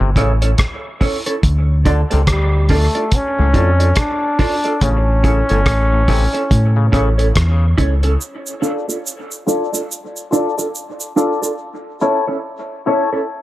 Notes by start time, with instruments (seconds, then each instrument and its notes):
0.00 fingered electric bass G1, clav C3
0.16 fingered electric bass A1, clav C#3, clean electric guitar C#4 E4 A4 C#5, kick, closed hi-hat
0.42 clean electric guitar C#4 E4 A4 C#5, closed hi-hat
0.58 kick, cross-stick, closed hi-hat
1.01 clean electric guitar C#4 E4 A4 C#5, kick, open hi-hat
1.26 clean electric guitar C#4 E4 A4 C#5, closed hi-hat
1.43 fingered electric bass D2, kick, closed hi-hat
1.85 clav D3, clean electric guitar D4 F4 A4 D5, kick, closed hi-hat
2.10 fingered electric bass C#2, clav C3, clean electric guitar D4 F4 A4 D5, closed hi-hat
2.27 fingered electric bass D2, trombone G3, kick, cross-stick, closed hi-hat
2.69 clean electric guitar D4 F4 A4 D5, kick, open hi-hat
2.73 trombone A3
2.95 clean electric guitar D4 F4 A4 D5, closed hi-hat
3.12 trombone C#4, kick, closed hi-hat
3.39 fingered electric bass C#2, clav A2
3.54 fingered electric bass F2, clav A2, clean electric guitar D4 F4 A4 D5, kick, closed hi-hat
3.79 clean electric guitar D4 F4 A4 D5, closed hi-hat
3.96 trombone D4, kick, cross-stick, closed hi-hat
4.39 clean electric guitar D4 F4 A4 D5, kick, open hi-hat
4.64 clean electric guitar D4 F4 A4 D5, closed hi-hat
4.81 fingered electric bass A1, clav C#3, trombone C#4, kick, closed hi-hat
5.24 clav C#3, clean electric guitar C#4 E4 A4 C#5, kick, closed hi-hat
5.49 fingered electric bass G1, clav A2, clean electric guitar C#4 E4 A4 C#5, closed hi-hat
5.66 fingered electric bass A1, kick, cross-stick, closed hi-hat
5.93 clav A2
6.08 clav C3, clean electric guitar C#4 E4 A4 C#5, kick, open hi-hat
6.33 clean electric guitar C#4 E4 A4 C#5, closed hi-hat
6.51 fingered electric bass A2, kick, closed hi-hat
6.76 clav C#3
6.92 fingered electric bass A1, clav C#3, clean electric guitar C#4 E4 A4 C#5, kick, closed hi-hat
7.18 clean electric guitar C#4 E4 A4 C#5, closed hi-hat
7.36 fingered electric bass E2, kick, cross-stick, closed hi-hat
7.78 fingered electric bass C#2, clean electric guitar C#4 E4 A4 C#5, kick, closed hi-hat
8.03 clean electric guitar C#4 E4 A4 C#5, closed hi-hat
8.21 cabasa
8.47 cabasa
8.62 clean electric guitar D4 F4 A4 D5, synth stab F4 A4 D5, cabasa
8.88 clean electric guitar D4 F4 A4 D5, cabasa
9.07 cabasa
9.31 cabasa
9.47 clean electric guitar D4 F4 A4 D5, synth stab F4 A4 D5, cabasa
9.72 clean electric guitar D4 F4 A4 D5, cabasa
9.92 cabasa
10.16 cabasa
10.31 clean electric guitar D4 F4 A4 D5, synth stab F4 A4 D5, cabasa
10.58 clean electric guitar D4 F4 A4 D5, cabasa
10.75 cabasa
11.00 cabasa
11.16 clean electric guitar D4 F4 A4 D5, synth stab F4 A4 D5, cabasa
11.42 clean electric guitar D4 F4 A4 D5, cabasa
12.01 clean electric guitar C#4 E4 A4 C#5, synth stab E4 A4 C#5
12.27 clean electric guitar C#4 E4 A4 C#5
12.86 clean electric guitar C#4 E4 A4 C#5, synth stab E4 A4 C#5
13.13 clean electric guitar C#4 E4 A4 C#5